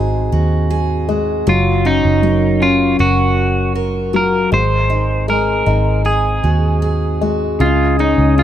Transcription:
Already playing: G#1 G#2 G#3 C4 D#4 F#4 G#4 C5
0.32 D#2 F#4
0.70 G#4
1.09 G#3 F#4
1.47 F#1 F#3 F4
1.85 C#4 D#4
2.05 F#1
2.23 F#3 A#4
2.61 C#4 F4
2.99 F#1 F#4 A#4
3.75 A#4
4.13 F#3 F4 A#4
4.52 G#1 G#2 G#3 C5
4.90 C4 D#4
5.28 G#3 G#4 A#4
5.66 G#1 C4 D#4
6.05 G#4
6.44 D#2 F#4
6.82 G#4
7.21 G#3 F#4
7.59 C#2 C#3 F4 G#4 D#5 G#5 D#6
7.99 G#3 C#4 D#4
8.18 C#2
8.38 C#3 F4 G#4

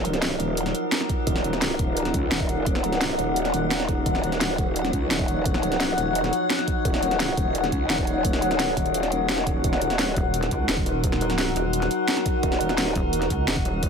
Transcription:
Already playing: D#1 F3 F#3 D#4 A#4 F#5
0.05 closed hi-hat
0.14 snare, closed hi-hat
0.22 snare, closed hi-hat
0.40 D#1, closed hi-hat
0.57 closed hi-hat
0.66 snare, closed hi-hat
0.75 closed hi-hat
0.92 snare, closed hi-hat
1.01 snare
1.09 kick, closed hi-hat
1.27 D#1, kick, closed hi-hat
1.36 snare
1.44 closed hi-hat
1.53 snare, closed hi-hat
1.62 snare, closed hi-hat
1.79 D#1, kick, closed hi-hat
1.97 closed hi-hat
2.05 snare, closed hi-hat
2.14 C#2, kick, closed hi-hat
2.31 D#1, snare, closed hi-hat
2.40 kick
2.49 closed hi-hat
2.66 kick, closed hi-hat
2.75 snare
2.84 closed hi-hat
2.93 snare, closed hi-hat
3.01 snare, closed hi-hat
3.19 D#1, closed hi-hat
3.36 closed hi-hat
3.45 snare, closed hi-hat
3.54 D#1, closed hi-hat
3.71 snare, closed hi-hat
3.80 snare
3.89 kick, closed hi-hat
4.06 D#1 C#5, kick, closed hi-hat
4.15 snare
4.24 closed hi-hat
4.32 snare, closed hi-hat
4.41 snare, closed hi-hat
4.58 D#1, kick, closed hi-hat
4.76 closed hi-hat
4.85 snare, closed hi-hat
4.93 C#2, kick, closed hi-hat
5.11 D#1, snare, closed hi-hat
5.19 kick
5.28 closed hi-hat
5.46 kick, closed hi-hat
5.54 snare
5.63 closed hi-hat
5.72 snare, closed hi-hat
5.80 snare, closed hi-hat
5.98 D#1, closed hi-hat
6.15 closed hi-hat
6.24 snare, closed hi-hat
6.33 closed hi-hat
6.50 snare, closed hi-hat
6.59 snare
6.68 kick, closed hi-hat
6.85 D#1, kick, closed hi-hat
6.94 snare
7.03 closed hi-hat
7.11 snare, closed hi-hat
7.20 snare, closed hi-hat
7.37 D#1, kick, closed hi-hat
7.55 closed hi-hat
7.64 snare, closed hi-hat
7.72 C#2, kick, closed hi-hat
7.90 D#1, snare, closed hi-hat
7.98 kick
8.07 closed hi-hat
8.25 kick, closed hi-hat
8.33 snare
8.42 closed hi-hat
8.51 snare, closed hi-hat
8.60 snare, closed hi-hat
8.77 D#1, kick, closed hi-hat
8.86 closed hi-hat
8.94 closed hi-hat
9.03 snare, closed hi-hat
9.12 closed hi-hat
9.29 snare, closed hi-hat
9.38 snare
9.47 kick, closed hi-hat
9.64 D#1 F#4 A#4, kick, closed hi-hat
9.73 snare
9.82 closed hi-hat
9.90 snare, closed hi-hat
9.99 snare, closed hi-hat
10.16 D#1, kick, closed hi-hat
10.34 closed hi-hat
10.43 snare, closed hi-hat
10.51 C#2, kick, closed hi-hat
10.69 D#1, snare, closed hi-hat
10.78 kick
10.86 closed hi-hat
11.04 kick, closed hi-hat
11.12 snare
11.21 closed hi-hat
11.30 snare, closed hi-hat
11.38 snare, closed hi-hat
11.56 D#1, closed hi-hat
11.73 closed hi-hat
11.82 snare, closed hi-hat
11.91 closed hi-hat
12.08 snare, closed hi-hat
12.17 snare
12.26 kick, closed hi-hat
12.43 D#1, kick, closed hi-hat
12.52 snare
12.61 closed hi-hat
12.69 snare, closed hi-hat
12.78 snare, closed hi-hat
12.95 D#1, kick, closed hi-hat
13.13 closed hi-hat
13.22 snare, closed hi-hat
13.30 C#2, kick, closed hi-hat
13.48 D#1, snare, closed hi-hat
13.57 kick
13.65 closed hi-hat
13.83 kick, closed hi-hat

